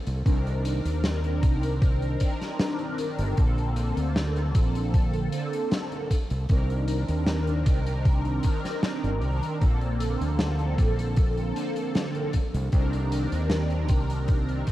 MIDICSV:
0, 0, Header, 1, 5, 480
1, 0, Start_track
1, 0, Tempo, 779221
1, 160, Time_signature, 4, 2, 24, 8
1, 9066, End_track
2, 0, Start_track
2, 0, Title_t, "Ambient pad"
2, 0, Program_c, 0, 92
2, 5916, Note_on_c, 0, 53, 82
2, 5918, Note_on_c, 0, 60, 73
2, 5918, Note_on_c, 0, 69, 88
2, 5920, Note_on_c, 0, 62, 74
2, 5921, Note_on_c, 0, 58, 72
2, 7582, Note_off_c, 0, 53, 0
2, 7582, Note_off_c, 0, 69, 0
2, 7583, Note_off_c, 0, 60, 0
2, 7600, Note_on_c, 0, 51, 88
2, 7600, Note_on_c, 0, 60, 81
2, 7602, Note_on_c, 0, 67, 92
2, 8536, Note_off_c, 0, 62, 0
2, 9066, Note_off_c, 0, 51, 0
2, 9066, Note_off_c, 0, 58, 0
2, 9066, Note_off_c, 0, 60, 0
2, 9066, Note_off_c, 0, 67, 0
2, 9066, End_track
3, 0, Start_track
3, 0, Title_t, "Analog polysynth"
3, 0, Program_c, 1, 90
3, 41, Control_c, 1, 64, 127
3, 148, Note_on_c, 1, 51, 79
3, 153, Note_on_c, 1, 60, 71
3, 160, Note_on_c, 1, 62, 73
3, 167, Note_on_c, 1, 70, 88
3, 1327, Note_off_c, 1, 51, 0
3, 1329, Note_off_c, 1, 60, 0
3, 1333, Note_off_c, 1, 62, 0
3, 1337, Note_off_c, 1, 70, 0
3, 1351, Note_on_c, 1, 51, 82
3, 1357, Note_on_c, 1, 60, 81
3, 1362, Note_on_c, 1, 62, 83
3, 1369, Note_on_c, 1, 70, 94
3, 2048, Note_off_c, 1, 51, 0
3, 2051, Note_off_c, 1, 60, 0
3, 2054, Note_off_c, 1, 62, 0
3, 2058, Note_off_c, 1, 70, 0
3, 2072, Note_on_c, 1, 50, 83
3, 2078, Note_on_c, 1, 58, 76
3, 2084, Note_on_c, 1, 60, 75
3, 2088, Control_c, 1, 64, 0
3, 2090, Note_on_c, 1, 69, 89
3, 2184, Control_c, 1, 64, 127
3, 3249, Note_off_c, 1, 50, 0
3, 3252, Note_off_c, 1, 58, 0
3, 3255, Note_off_c, 1, 60, 0
3, 3258, Note_off_c, 1, 69, 0
3, 3276, Note_on_c, 1, 50, 90
3, 3280, Note_on_c, 1, 58, 75
3, 3281, Note_on_c, 1, 60, 76
3, 3285, Note_on_c, 1, 69, 98
3, 3744, Note_off_c, 1, 50, 0
3, 3746, Note_off_c, 1, 58, 0
3, 3747, Note_off_c, 1, 60, 0
3, 3749, Note_off_c, 1, 69, 0
3, 3770, Control_c, 1, 64, 0
3, 3878, Control_c, 1, 64, 127
3, 3992, Note_on_c, 1, 51, 81
3, 3998, Note_on_c, 1, 60, 72
3, 4003, Note_on_c, 1, 62, 74
3, 4011, Note_on_c, 1, 70, 87
3, 5169, Note_off_c, 1, 51, 0
3, 5172, Note_off_c, 1, 60, 0
3, 5174, Note_off_c, 1, 62, 0
3, 5178, Note_off_c, 1, 70, 0
3, 5192, Note_on_c, 1, 51, 91
3, 5198, Note_on_c, 1, 60, 81
3, 5203, Note_on_c, 1, 62, 83
3, 5211, Note_on_c, 1, 70, 96
3, 5889, Note_off_c, 1, 51, 0
3, 5892, Note_off_c, 1, 60, 0
3, 5894, Note_off_c, 1, 62, 0
3, 5898, Note_off_c, 1, 70, 0
3, 5913, Note_on_c, 1, 50, 77
3, 5919, Note_on_c, 1, 58, 73
3, 5926, Note_on_c, 1, 60, 72
3, 5928, Control_c, 1, 64, 0
3, 5931, Note_on_c, 1, 69, 87
3, 6045, Control_c, 1, 64, 127
3, 7089, Note_off_c, 1, 50, 0
3, 7092, Note_off_c, 1, 58, 0
3, 7096, Note_off_c, 1, 60, 0
3, 7098, Note_off_c, 1, 69, 0
3, 7117, Note_on_c, 1, 50, 88
3, 7120, Note_on_c, 1, 58, 82
3, 7123, Note_on_c, 1, 60, 82
3, 7125, Note_on_c, 1, 69, 96
3, 7585, Note_off_c, 1, 50, 0
3, 7586, Note_off_c, 1, 58, 0
3, 7588, Note_off_c, 1, 60, 0
3, 7589, Note_off_c, 1, 69, 0
3, 7609, Control_c, 1, 64, 0
3, 7734, Control_c, 1, 64, 127
3, 7832, Note_on_c, 1, 51, 83
3, 7838, Note_on_c, 1, 60, 73
3, 7846, Note_on_c, 1, 62, 78
3, 7852, Note_on_c, 1, 70, 85
3, 9009, Note_off_c, 1, 51, 0
3, 9012, Note_off_c, 1, 60, 0
3, 9016, Note_off_c, 1, 62, 0
3, 9019, Note_off_c, 1, 70, 0
3, 9030, Note_on_c, 1, 51, 92
3, 9038, Note_on_c, 1, 60, 77
3, 9042, Note_on_c, 1, 62, 81
3, 9066, Note_off_c, 1, 51, 0
3, 9066, Note_off_c, 1, 60, 0
3, 9066, Note_off_c, 1, 62, 0
3, 9066, End_track
4, 0, Start_track
4, 0, Title_t, "Fingered electric bass"
4, 0, Program_c, 2, 33
4, 44, Note_on_c, 2, 36, 94
4, 140, Note_off_c, 2, 36, 0
4, 160, Note_on_c, 2, 36, 93
4, 492, Note_off_c, 2, 36, 0
4, 525, Note_on_c, 2, 39, 95
4, 880, Note_off_c, 2, 39, 0
4, 880, Note_on_c, 2, 36, 88
4, 1330, Note_off_c, 2, 36, 0
4, 1965, Note_on_c, 2, 31, 102
4, 2061, Note_off_c, 2, 31, 0
4, 2081, Note_on_c, 2, 34, 98
4, 2413, Note_off_c, 2, 34, 0
4, 2445, Note_on_c, 2, 38, 94
4, 2801, Note_off_c, 2, 38, 0
4, 2801, Note_on_c, 2, 34, 84
4, 3251, Note_off_c, 2, 34, 0
4, 3887, Note_on_c, 2, 36, 94
4, 3982, Note_off_c, 2, 36, 0
4, 4002, Note_on_c, 2, 36, 98
4, 4333, Note_off_c, 2, 36, 0
4, 4366, Note_on_c, 2, 39, 96
4, 4721, Note_off_c, 2, 39, 0
4, 4721, Note_on_c, 2, 36, 90
4, 5170, Note_off_c, 2, 36, 0
4, 5567, Note_on_c, 2, 31, 97
4, 5681, Note_off_c, 2, 31, 0
4, 5681, Note_on_c, 2, 36, 90
4, 5785, Note_off_c, 2, 36, 0
4, 5922, Note_on_c, 2, 34, 96
4, 6253, Note_off_c, 2, 34, 0
4, 6287, Note_on_c, 2, 38, 93
4, 6642, Note_off_c, 2, 38, 0
4, 6642, Note_on_c, 2, 34, 85
4, 7091, Note_off_c, 2, 34, 0
4, 7727, Note_on_c, 2, 36, 100
4, 7822, Note_off_c, 2, 36, 0
4, 7841, Note_on_c, 2, 36, 100
4, 8173, Note_off_c, 2, 36, 0
4, 8207, Note_on_c, 2, 39, 95
4, 8560, Note_off_c, 2, 39, 0
4, 8560, Note_on_c, 2, 36, 86
4, 9010, Note_off_c, 2, 36, 0
4, 9066, End_track
5, 0, Start_track
5, 0, Title_t, "Drums"
5, 42, Note_on_c, 9, 42, 62
5, 103, Note_off_c, 9, 42, 0
5, 160, Note_on_c, 9, 36, 124
5, 163, Note_on_c, 9, 42, 66
5, 221, Note_off_c, 9, 36, 0
5, 224, Note_off_c, 9, 42, 0
5, 289, Note_on_c, 9, 42, 45
5, 350, Note_off_c, 9, 42, 0
5, 401, Note_on_c, 9, 42, 98
5, 463, Note_off_c, 9, 42, 0
5, 527, Note_on_c, 9, 42, 65
5, 589, Note_off_c, 9, 42, 0
5, 639, Note_on_c, 9, 42, 74
5, 640, Note_on_c, 9, 38, 115
5, 701, Note_off_c, 9, 38, 0
5, 701, Note_off_c, 9, 42, 0
5, 764, Note_on_c, 9, 42, 50
5, 825, Note_off_c, 9, 42, 0
5, 880, Note_on_c, 9, 36, 104
5, 880, Note_on_c, 9, 42, 110
5, 941, Note_off_c, 9, 42, 0
5, 942, Note_off_c, 9, 36, 0
5, 1005, Note_on_c, 9, 42, 72
5, 1066, Note_off_c, 9, 42, 0
5, 1120, Note_on_c, 9, 36, 127
5, 1120, Note_on_c, 9, 42, 74
5, 1182, Note_off_c, 9, 36, 0
5, 1182, Note_off_c, 9, 42, 0
5, 1246, Note_on_c, 9, 42, 44
5, 1307, Note_off_c, 9, 42, 0
5, 1356, Note_on_c, 9, 42, 108
5, 1361, Note_on_c, 9, 36, 65
5, 1417, Note_off_c, 9, 42, 0
5, 1422, Note_off_c, 9, 36, 0
5, 1487, Note_on_c, 9, 38, 40
5, 1487, Note_on_c, 9, 42, 61
5, 1549, Note_off_c, 9, 38, 0
5, 1549, Note_off_c, 9, 42, 0
5, 1598, Note_on_c, 9, 38, 127
5, 1598, Note_on_c, 9, 42, 59
5, 1660, Note_off_c, 9, 38, 0
5, 1660, Note_off_c, 9, 42, 0
5, 1717, Note_on_c, 9, 42, 49
5, 1779, Note_off_c, 9, 42, 0
5, 1838, Note_on_c, 9, 42, 97
5, 1900, Note_off_c, 9, 42, 0
5, 1963, Note_on_c, 9, 42, 69
5, 2025, Note_off_c, 9, 42, 0
5, 2078, Note_on_c, 9, 42, 64
5, 2081, Note_on_c, 9, 36, 127
5, 2140, Note_off_c, 9, 42, 0
5, 2143, Note_off_c, 9, 36, 0
5, 2206, Note_on_c, 9, 42, 43
5, 2267, Note_off_c, 9, 42, 0
5, 2318, Note_on_c, 9, 42, 100
5, 2380, Note_off_c, 9, 42, 0
5, 2446, Note_on_c, 9, 42, 66
5, 2508, Note_off_c, 9, 42, 0
5, 2562, Note_on_c, 9, 38, 121
5, 2562, Note_on_c, 9, 42, 64
5, 2624, Note_off_c, 9, 38, 0
5, 2624, Note_off_c, 9, 42, 0
5, 2687, Note_on_c, 9, 42, 52
5, 2748, Note_off_c, 9, 42, 0
5, 2800, Note_on_c, 9, 42, 99
5, 2801, Note_on_c, 9, 36, 105
5, 2862, Note_off_c, 9, 42, 0
5, 2863, Note_off_c, 9, 36, 0
5, 2926, Note_on_c, 9, 42, 67
5, 2988, Note_off_c, 9, 42, 0
5, 3041, Note_on_c, 9, 36, 126
5, 3041, Note_on_c, 9, 42, 70
5, 3103, Note_off_c, 9, 36, 0
5, 3103, Note_off_c, 9, 42, 0
5, 3162, Note_on_c, 9, 42, 47
5, 3224, Note_off_c, 9, 42, 0
5, 3279, Note_on_c, 9, 42, 95
5, 3341, Note_off_c, 9, 42, 0
5, 3407, Note_on_c, 9, 42, 65
5, 3469, Note_off_c, 9, 42, 0
5, 3519, Note_on_c, 9, 42, 66
5, 3522, Note_on_c, 9, 38, 123
5, 3581, Note_off_c, 9, 42, 0
5, 3583, Note_off_c, 9, 38, 0
5, 3644, Note_on_c, 9, 42, 42
5, 3706, Note_off_c, 9, 42, 0
5, 3761, Note_on_c, 9, 36, 65
5, 3762, Note_on_c, 9, 42, 109
5, 3823, Note_off_c, 9, 36, 0
5, 3823, Note_off_c, 9, 42, 0
5, 3882, Note_on_c, 9, 42, 58
5, 3944, Note_off_c, 9, 42, 0
5, 3996, Note_on_c, 9, 42, 71
5, 4001, Note_on_c, 9, 36, 119
5, 4058, Note_off_c, 9, 42, 0
5, 4063, Note_off_c, 9, 36, 0
5, 4127, Note_on_c, 9, 42, 46
5, 4189, Note_off_c, 9, 42, 0
5, 4236, Note_on_c, 9, 42, 91
5, 4298, Note_off_c, 9, 42, 0
5, 4364, Note_on_c, 9, 42, 67
5, 4426, Note_off_c, 9, 42, 0
5, 4476, Note_on_c, 9, 38, 121
5, 4479, Note_on_c, 9, 42, 62
5, 4538, Note_off_c, 9, 38, 0
5, 4540, Note_off_c, 9, 42, 0
5, 4604, Note_on_c, 9, 42, 50
5, 4666, Note_off_c, 9, 42, 0
5, 4720, Note_on_c, 9, 42, 103
5, 4721, Note_on_c, 9, 36, 102
5, 4781, Note_off_c, 9, 42, 0
5, 4783, Note_off_c, 9, 36, 0
5, 4845, Note_on_c, 9, 42, 73
5, 4907, Note_off_c, 9, 42, 0
5, 4961, Note_on_c, 9, 42, 70
5, 4962, Note_on_c, 9, 36, 127
5, 5023, Note_off_c, 9, 36, 0
5, 5023, Note_off_c, 9, 42, 0
5, 5083, Note_on_c, 9, 42, 45
5, 5145, Note_off_c, 9, 42, 0
5, 5194, Note_on_c, 9, 42, 100
5, 5202, Note_on_c, 9, 36, 71
5, 5255, Note_off_c, 9, 42, 0
5, 5264, Note_off_c, 9, 36, 0
5, 5328, Note_on_c, 9, 38, 41
5, 5330, Note_on_c, 9, 42, 67
5, 5390, Note_off_c, 9, 38, 0
5, 5391, Note_off_c, 9, 42, 0
5, 5438, Note_on_c, 9, 38, 119
5, 5440, Note_on_c, 9, 42, 60
5, 5500, Note_off_c, 9, 38, 0
5, 5501, Note_off_c, 9, 42, 0
5, 5569, Note_on_c, 9, 42, 46
5, 5631, Note_off_c, 9, 42, 0
5, 5676, Note_on_c, 9, 42, 90
5, 5738, Note_off_c, 9, 42, 0
5, 5807, Note_on_c, 9, 42, 60
5, 5869, Note_off_c, 9, 42, 0
5, 5922, Note_on_c, 9, 36, 120
5, 5922, Note_on_c, 9, 42, 64
5, 5984, Note_off_c, 9, 36, 0
5, 5984, Note_off_c, 9, 42, 0
5, 6045, Note_on_c, 9, 42, 43
5, 6106, Note_off_c, 9, 42, 0
5, 6161, Note_on_c, 9, 42, 94
5, 6223, Note_off_c, 9, 42, 0
5, 6291, Note_on_c, 9, 42, 58
5, 6352, Note_off_c, 9, 42, 0
5, 6399, Note_on_c, 9, 38, 126
5, 6400, Note_on_c, 9, 42, 65
5, 6460, Note_off_c, 9, 38, 0
5, 6462, Note_off_c, 9, 42, 0
5, 6521, Note_on_c, 9, 42, 46
5, 6583, Note_off_c, 9, 42, 0
5, 6642, Note_on_c, 9, 36, 104
5, 6643, Note_on_c, 9, 42, 94
5, 6703, Note_off_c, 9, 36, 0
5, 6705, Note_off_c, 9, 42, 0
5, 6768, Note_on_c, 9, 42, 69
5, 6830, Note_off_c, 9, 42, 0
5, 6877, Note_on_c, 9, 42, 70
5, 6882, Note_on_c, 9, 36, 120
5, 6938, Note_off_c, 9, 42, 0
5, 6943, Note_off_c, 9, 36, 0
5, 7007, Note_on_c, 9, 42, 43
5, 7069, Note_off_c, 9, 42, 0
5, 7122, Note_on_c, 9, 42, 87
5, 7184, Note_off_c, 9, 42, 0
5, 7245, Note_on_c, 9, 42, 60
5, 7306, Note_off_c, 9, 42, 0
5, 7360, Note_on_c, 9, 42, 56
5, 7364, Note_on_c, 9, 38, 115
5, 7422, Note_off_c, 9, 42, 0
5, 7425, Note_off_c, 9, 38, 0
5, 7483, Note_on_c, 9, 42, 44
5, 7544, Note_off_c, 9, 42, 0
5, 7596, Note_on_c, 9, 42, 90
5, 7601, Note_on_c, 9, 36, 65
5, 7658, Note_off_c, 9, 42, 0
5, 7663, Note_off_c, 9, 36, 0
5, 7728, Note_on_c, 9, 42, 65
5, 7789, Note_off_c, 9, 42, 0
5, 7837, Note_on_c, 9, 42, 60
5, 7841, Note_on_c, 9, 36, 117
5, 7899, Note_off_c, 9, 42, 0
5, 7902, Note_off_c, 9, 36, 0
5, 7966, Note_on_c, 9, 42, 42
5, 8028, Note_off_c, 9, 42, 0
5, 8083, Note_on_c, 9, 42, 94
5, 8144, Note_off_c, 9, 42, 0
5, 8207, Note_on_c, 9, 42, 70
5, 8269, Note_off_c, 9, 42, 0
5, 8316, Note_on_c, 9, 38, 115
5, 8317, Note_on_c, 9, 42, 73
5, 8378, Note_off_c, 9, 38, 0
5, 8379, Note_off_c, 9, 42, 0
5, 8442, Note_on_c, 9, 42, 43
5, 8503, Note_off_c, 9, 42, 0
5, 8555, Note_on_c, 9, 42, 97
5, 8561, Note_on_c, 9, 36, 96
5, 8617, Note_off_c, 9, 42, 0
5, 8622, Note_off_c, 9, 36, 0
5, 8686, Note_on_c, 9, 42, 65
5, 8748, Note_off_c, 9, 42, 0
5, 8797, Note_on_c, 9, 42, 70
5, 8801, Note_on_c, 9, 36, 110
5, 8859, Note_off_c, 9, 42, 0
5, 8863, Note_off_c, 9, 36, 0
5, 8925, Note_on_c, 9, 42, 47
5, 8986, Note_off_c, 9, 42, 0
5, 9036, Note_on_c, 9, 42, 92
5, 9040, Note_on_c, 9, 36, 65
5, 9066, Note_off_c, 9, 36, 0
5, 9066, Note_off_c, 9, 42, 0
5, 9066, End_track
0, 0, End_of_file